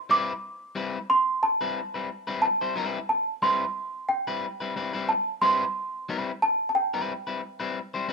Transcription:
0.09 G3 C4 E4 B4 D6
0.75 G3 C4 E4 B4
1.10 C6
1.43 A5
1.61 G3 C4 E4 B4
1.94 G3 C4 E4 B4
2.27 G3 C4 E4 B4
2.42 A5
2.61 G3 C4 E4 C5
2.76 G3 C4 E4 B4
3.09 A5
3.42 G3 C4 E4 B4 C6
4.09 G5
4.27 G3 C4 E4 B4
4.60 G3 C4 E4 B4
4.76 G3 C4 E4 B4
4.93 G3 C4 E4 B4
5.09 A5
5.42 G3 C4 E4 B4 C6
6.09 G3 C4 E4 B4
6.42 A5
6.69 A5
6.75 G5
6.94 G3 C4 E4 B4
7.27 G3 C4 E4 B4
7.60 G3 C4 E4 B4
7.94 G3 C4 E4 C5
8.08 G3 C4 E4

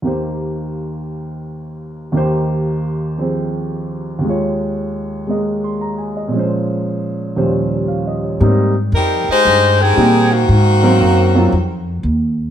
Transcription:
0.02 D#2 D#3 A#3 G4
0.07 C5
2.12 D#2 D#3 A#3 G4
2.17 C5
3.18 F3 C4 G#4 C5
4.19 D#2 D#3
4.24 G#3 F4
4.30 C#5
5.27 G#3 A#3 G#4 D#5
5.64 C6
5.81 A#5
5.98 G#5
6.17 D#5
6.28 A#2 F3
6.33 G#3 C#4
6.39 C5
7.36 D#2 A#2 F3 G3 C#4 C5
7.88 F5
8.07 D#5
8.23 C#5
8.40 G#2 G3 A#3 C4 D#4
8.92 F2 G3 C4 D#4 A#4
9.28 G#3 D#4 G4 C5, muted upright bass stroke
9.45 G2
9.80 D#3 C4 G4 G#4
9.96 A#2 G3 A#3 C4 D#4
10.32 D#3 A#3 C4 F#4
10.49 G#2
10.83 F#3 A#3 C4 F5
11.01 F#2
11.35 F#3 A#3 C4 F4
11.52 F2
12.03 D#2

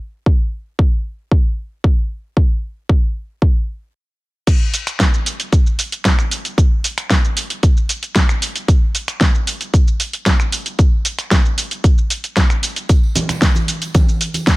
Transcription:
0.26 kick
0.79 kick
1.31 kick
1.84 kick
2.37 kick
2.89 kick
3.42 kick
4.47 kick, closed hi-hat, crash, shaker
4.74 open hi-hat, shaker
4.87 finger snap, closed hi-hat, shaker
5.00 kick, snare, closed hi-hat, shaker
5.14 shaker
5.26 open hi-hat, shaker
5.40 closed hi-hat, shaker
5.52 kick, closed hi-hat, shaker
5.67 shaker
5.79 open hi-hat, shaker
5.92 closed hi-hat, shaker
6.05 kick, snare, closed hi-hat, shaker
6.19 finger snap, shaker
6.31 open hi-hat, shaker
6.45 closed hi-hat, shaker
6.58 kick, closed hi-hat, shaker
6.84 open hi-hat, shaker
6.98 finger snap, closed hi-hat, shaker
7.10 kick, snare, closed hi-hat, shaker
7.25 shaker
7.37 open hi-hat, shaker
7.50 closed hi-hat, shaker
7.63 kick, closed hi-hat, shaker
7.77 shaker
7.89 open hi-hat, shaker
8.03 closed hi-hat, shaker
8.15 kick, snare, closed hi-hat, shaker
8.29 finger snap, shaker
8.42 open hi-hat, shaker
8.56 closed hi-hat, shaker
8.68 kick, closed hi-hat, shaker
8.95 open hi-hat, shaker
9.08 finger snap, closed hi-hat, shaker
9.21 kick, snare, closed hi-hat, shaker
9.35 shaker
9.47 open hi-hat, shaker
9.61 closed hi-hat, shaker
9.74 kick, closed hi-hat, shaker
9.88 shaker
10.00 open hi-hat, shaker
10.13 closed hi-hat, shaker
10.26 kick, snare, closed hi-hat, shaker
10.40 finger snap, shaker
10.52 open hi-hat, shaker
10.66 closed hi-hat, shaker
10.79 kick, closed hi-hat, shaker
11.05 open hi-hat, shaker
11.19 finger snap, closed hi-hat, shaker
11.31 kick, snare, closed hi-hat, shaker
11.46 shaker
11.58 open hi-hat, shaker
11.71 closed hi-hat, shaker
11.84 kick, closed hi-hat, shaker
11.98 shaker
12.10 open hi-hat, shaker
12.24 closed hi-hat, shaker
12.37 kick, snare, closed hi-hat, shaker
12.50 finger snap, shaker
12.63 open hi-hat, shaker
12.76 closed hi-hat, shaker
12.89 kick, closed hi-hat, tambourine, shaker
13.03 tambourine
13.15 open hi-hat, high conga, low conga, shaker
13.29 finger snap, closed hi-hat, tambourine, low conga, shaker
13.42 kick, snare, closed hi-hat, tambourine, shaker
13.55 tambourine, high conga, shaker
13.68 open hi-hat, shaker
13.82 closed hi-hat, tambourine, shaker
13.95 kick, closed hi-hat, tambourine, high conga, shaker
14.09 tambourine, shaker
14.21 open hi-hat, shaker
14.34 closed hi-hat, tambourine, high conga, shaker
14.47 kick, snare, closed hi-hat, tambourine, shaker

